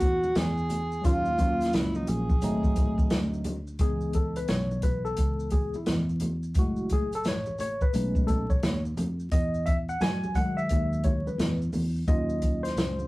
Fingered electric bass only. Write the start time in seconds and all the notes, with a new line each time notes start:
Already playing: E2
0.36 E2
1.05 D#2
1.73 C#2
2.07 A#1
2.42 G#1
3.11 D2
3.79 C#2
4.49 B1
5.18 C#2
5.76 muted fingered electric bass stroke
5.87 E2
6.55 F#1
7.25 A1
7.94 B1
8.63 D#2
8.98 F2
9.32 E2
10.01 F#2
10.71 D#2
11.27 muted fingered electric bass stroke
11.38 E2
11.73 E2
12.08 D#2
12.76 C#2